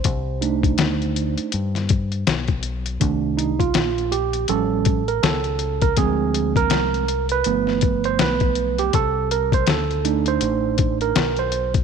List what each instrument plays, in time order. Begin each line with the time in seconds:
Already playing: tine electric piano C5
0.04 fingered electric bass C2, kick, closed hi-hat
0.41 tine electric piano A3 D4 D#4, closed hi-hat
0.63 kick, closed hi-hat
0.78 fingered electric bass D2, snare, closed hi-hat
1.02 closed hi-hat
1.16 closed hi-hat
1.38 muted fingered electric bass stroke, closed hi-hat
1.52 fingered electric bass G2, closed hi-hat
1.75 snare, closed hi-hat
1.89 kick, closed hi-hat
2.12 closed hi-hat
2.27 fingered electric bass B1, snare, closed hi-hat
2.48 kick, closed hi-hat
2.63 closed hi-hat
2.86 closed hi-hat
3.00 fingered electric bass C2, tine electric piano D#3 A3 D4, kick, closed hi-hat
3.37 tine electric piano D#4, closed hi-hat
3.59 tine electric piano F4, kick, closed hi-hat
3.74 fingered electric bass A#1, snare, closed hi-hat
3.98 closed hi-hat
4.12 tine electric piano G4, closed hi-hat
4.33 closed hi-hat
4.48 fingered electric bass A1, tine electric piano F3 G3 C#4 A4, closed hi-hat
4.85 kick, closed hi-hat
5.08 tine electric piano A#4, closed hi-hat
5.23 fingered electric bass C#2, tine electric piano A4, snare, closed hi-hat
5.44 closed hi-hat
5.59 closed hi-hat
5.81 tine electric piano A#4, kick, closed hi-hat
5.97 fingered electric bass D2, tine electric piano F3 G#3 C4 G#4, kick, closed hi-hat
6.34 closed hi-hat
6.56 tine electric piano A#4, kick, closed hi-hat
6.70 fingered electric bass C2, snare, closed hi-hat
6.94 closed hi-hat
7.08 closed hi-hat
7.29 tine electric piano B4, closed hi-hat
7.44 fingered electric bass G1, tine electric piano F3 A3 B3, closed hi-hat
7.67 snare
7.81 kick, closed hi-hat
8.04 tine electric piano C5, closed hi-hat
8.19 fingered electric bass B1, tine electric piano B4, snare, closed hi-hat
8.40 kick, closed hi-hat
8.55 closed hi-hat
8.78 tine electric piano G4, closed hi-hat
8.93 fingered electric bass C2, tine electric piano A4, kick, closed hi-hat
9.31 tine electric piano A#4, closed hi-hat
9.52 tine electric piano C5, kick, closed hi-hat
9.67 fingered electric bass D2, tine electric piano A4, snare, closed hi-hat
9.91 closed hi-hat
10.05 tine electric piano A3 D4 D#4, closed hi-hat
10.26 tine electric piano C5, closed hi-hat
10.41 fingered electric bass A1, closed hi-hat
10.78 kick, closed hi-hat
11.01 tine electric piano A#4, closed hi-hat
11.16 fingered electric bass B1, snare, closed hi-hat
11.37 tine electric piano C5, closed hi-hat
11.52 closed hi-hat
11.74 kick, closed hi-hat